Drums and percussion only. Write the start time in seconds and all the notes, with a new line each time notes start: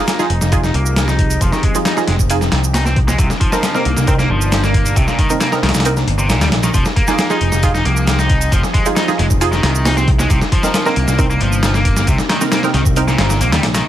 0.08 snare, closed hi-hat, shaker
0.19 snare, shaker
0.30 closed hi-hat
0.41 snare, shaker
0.52 kick, closed hi-hat, shaker
0.64 snare, shaker
0.74 closed hi-hat
0.86 shaker
0.96 snare, closed hi-hat, shaker
1.08 snare, shaker
1.19 kick, closed hi-hat
1.30 closed hi-hat, shaker
1.41 kick, closed hi-hat, shaker
1.52 snare, shaker
1.63 kick, closed hi-hat
1.75 closed hi-hat, shaker
1.85 snare, closed hi-hat, shaker
1.97 snare, shaker
2.08 snare, closed hi-hat
2.19 kick, shaker
2.30 closed hi-hat, shaker
2.41 snare, shaker
2.52 snare, closed hi-hat
2.64 shaker
2.74 snare, open hi-hat, shaker
2.86 snare, shaker
2.96 kick, closed hi-hat
3.08 snare, shaker
3.18 kick, closed hi-hat, shaker
3.30 snare, shaker
3.41 kick, closed hi-hat
3.52 snare, shaker
3.63 snare, closed hi-hat, shaker
3.74 snare, shaker
3.85 closed hi-hat
3.97 snare, shaker
4.07 kick, closed hi-hat, shaker
4.19 snare, shaker
4.41 shaker
4.52 snare, closed hi-hat, shaker
4.64 snare, shaker
4.74 kick, closed hi-hat
4.86 closed hi-hat, shaker
4.96 kick, closed hi-hat, shaker
5.08 snare, shaker
5.19 kick, closed hi-hat
5.30 closed hi-hat, shaker
5.41 snare, closed hi-hat, shaker
5.52 snare, shaker
5.63 snare, closed hi-hat
5.69 snare, closed hi-hat
5.74 snare, closed hi-hat, shaker
5.80 snare, closed hi-hat
5.85 closed hi-hat, shaker
5.97 snare, shaker
6.08 closed hi-hat
6.19 shaker
6.30 snare, closed hi-hat, shaker
6.41 snare, closed hi-hat, shaker
6.52 snare, closed hi-hat
6.63 snare, shaker
6.74 kick, closed hi-hat, shaker
6.85 snare, shaker
6.96 kick, closed hi-hat
7.08 snare, shaker
7.19 snare, closed hi-hat, shaker
7.30 snare, shaker
7.41 closed hi-hat
7.52 snare, shaker
7.63 kick, closed hi-hat, shaker
7.75 snare, shaker
7.85 closed hi-hat
7.97 shaker
8.07 snare, closed hi-hat, shaker
8.19 snare, shaker
8.29 kick, closed hi-hat
8.41 closed hi-hat, shaker
8.52 kick, closed hi-hat, shaker
8.63 snare, shaker
8.74 kick, closed hi-hat
8.86 closed hi-hat, shaker
8.96 snare, closed hi-hat, shaker
9.08 snare, shaker
9.19 snare, closed hi-hat
9.30 kick, shaker
9.41 closed hi-hat, shaker
9.53 snare, shaker
9.63 snare, closed hi-hat
9.75 shaker
9.85 snare, open hi-hat, shaker
9.97 snare, shaker
10.08 kick, closed hi-hat
10.19 snare, shaker
10.30 kick, closed hi-hat, shaker
10.41 snare, shaker
10.52 kick, closed hi-hat
10.63 snare, shaker
10.74 snare, closed hi-hat, shaker
10.86 snare, shaker
10.96 closed hi-hat
11.08 snare, shaker
11.19 kick, closed hi-hat, shaker
11.30 shaker
11.41 closed hi-hat
11.53 shaker
11.63 snare, closed hi-hat, shaker
11.74 snare, shaker
11.85 kick, closed hi-hat
11.97 snare, shaker
12.07 kick, closed hi-hat, shaker
12.18 snare, shaker
12.29 snare, closed hi-hat
12.41 snare, shaker
12.52 snare, closed hi-hat, shaker
12.63 snare, shaker
12.74 snare, closed hi-hat
12.85 kick, shaker
12.96 closed hi-hat, shaker
13.08 snare, shaker
13.18 snare, closed hi-hat
13.30 snare, shaker
13.41 closed hi-hat, shaker
13.52 snare, closed hi-hat, shaker
13.63 snare, closed hi-hat
13.75 snare, closed hi-hat, shaker